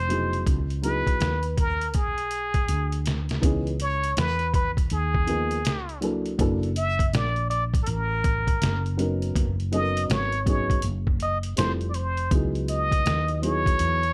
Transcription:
Already playing: F1 C5
0.08 B2 F#3 D#4 E4 G#4, closed hi-hat
0.33 closed hi-hat
0.47 C#2, kick, closed hi-hat
0.70 closed hi-hat
0.82 F#3 B3 D#4 E4 G#4 B4, closed hi-hat
1.07 muted fretless electric bass stroke, kick, closed hi-hat
1.21 D#2, snare, closed hi-hat
1.43 closed hi-hat
1.57 A#4, kick, closed hi-hat
1.81 closed hi-hat
1.94 B1 G#4, kick, closed hi-hat
2.18 closed hi-hat
2.31 closed hi-hat
2.54 kick, closed hi-hat
2.69 D2, closed hi-hat
2.92 closed hi-hat
3.06 snare, closed hi-hat
3.29 snare, closed hi-hat
3.41 C#2 E3 B3 C#4 D#4 G#4, kick, closed hi-hat
3.67 closed hi-hat
3.80 C#5, closed hi-hat
4.04 closed hi-hat
4.17 E2 B4, snare, closed hi-hat
4.39 closed hi-hat
4.54 B4, kick, closed hi-hat
4.77 kick, closed hi-hat
4.90 D#2 G#4, closed hi-hat
5.14 kick
5.27 F3 A#3 B3 D#4 G#4, closed hi-hat
5.51 closed hi-hat
5.65 C#2, snare, closed hi-hat
5.89 closed hi-hat
6.01 F#3 A#3 D4 E4 A4, closed hi-hat
6.26 closed hi-hat
6.38 F#1 F#3 A#3 D4 E4 A4, kick, closed hi-hat
6.63 closed hi-hat
6.76 E5, closed hi-hat
6.99 kick, closed hi-hat
7.13 A#1 D5, snare, closed hi-hat
7.36 closed hi-hat
7.50 D5, closed hi-hat
7.74 kick, closed hi-hat
7.83 A4 A#4, closed hi-hat
7.87 A1
8.24 kick, closed hi-hat
8.47 kick, closed hi-hat
8.62 F#1, snare, closed hi-hat
8.86 closed hi-hat
8.97 F#3 B3 C#4 D#4 A#4, closed hi-hat
9.22 closed hi-hat
9.36 F#1, kick, closed hi-hat
9.60 closed hi-hat
9.72 F#3 B3 C#4 D#4 A4 D#5, closed hi-hat
9.81 A#4
9.97 closed hi-hat
10.09 G#1 C#5, snare, closed hi-hat
10.32 closed hi-hat
10.46 F#3 B3 C#4 D#4 G#4 C#5, kick, closed hi-hat
10.70 kick, closed hi-hat
10.82 F#1, closed hi-hat
11.07 kick
11.20 D#5, closed hi-hat
11.43 closed hi-hat
11.56 F1 G3 C4 E4 F4 A4 C5, snare, closed hi-hat
11.81 closed hi-hat
11.90 D5
11.94 C5, closed hi-hat
12.17 closed hi-hat
12.31 C#2 F#3 B3 D#4 E4 G#4, kick, closed hi-hat
12.55 closed hi-hat
12.68 D#5, closed hi-hat
12.92 kick, closed hi-hat
13.06 D#2, snare, closed hi-hat
13.28 closed hi-hat
13.42 F#3 B3 D#4 E4 G#4 C#5, closed hi-hat
13.66 kick, closed hi-hat
13.79 E2, closed hi-hat
14.03 closed hi-hat

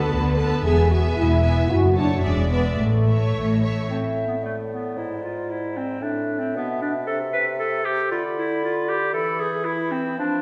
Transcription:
Already playing: B3 A4 B4 A5
0.12 D2 D3 B4
0.38 B3 A4 B4 A5
0.64 E1 E2 B3 G#4 E5 G#5
0.90 B3 F#4 E5 G#5
1.16 E1 E2 E4
1.42 B3 E5 G#5
1.69 F#1 F#2 F#4
1.95 A3 D4 C#5 A5
2.23 E1 E2 G#3 C#4 D5 E5
2.50 G#3 B3 D5 E5
2.76 A1 A2 A3
3.07 A3 C#5 E5
3.34 A1 A2
3.61 A3 C#5 E5
3.89 A2 C4 E5
4.27 B3
4.43 A3 D5
4.71 B3
4.97 G#2 E4
5.24 F4
5.50 E4
5.77 C4
6.01 A2 D4 E5
6.39 C4
6.56 B2 B3
6.82 D4
7.07 C3 A4
7.33 B4
7.59 A4
7.85 G4
8.11 D3 F4 B5
8.36 E4
8.64 F4
8.88 G4
9.13 E3 A4 B5
9.40 G#4
9.65 E4 B5
9.91 C4
10.18 F3 D4 A5

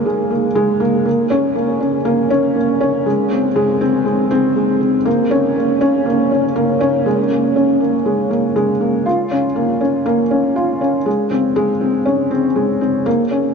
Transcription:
Already playing: G#3 A#3
0.06 G#3
0.30 A#3
0.55 G#3
0.80 A#3
1.05 A#3
1.30 C#4
1.55 A#3
1.80 C#4
2.05 A#3
2.30 C#4
2.55 A#3
2.81 C#4
3.06 G#3
3.31 C4
3.56 G#3
3.81 C4
4.05 G#3
4.31 C4
4.56 G#3
4.81 C4
5.05 A#3
5.31 C#4
5.56 A#3
5.81 C#4
6.06 A#3
6.31 C#4
6.56 A#3
6.81 C#4
7.06 G#3
7.31 A#3
7.56 C#4
7.80 A#3
8.06 G#3
8.30 A#3
8.56 G#3
8.81 A#3
9.06 F4
9.31 C#4
9.56 A#3
9.81 C#4
10.06 A#3
10.31 C#4
10.56 F4
10.81 C#4
11.06 G#3
11.31 C4
11.56 G#3
11.81 C4
12.05 C#4
12.31 C4
12.55 G#3
12.81 C4
13.06 A#3
13.31 C#4

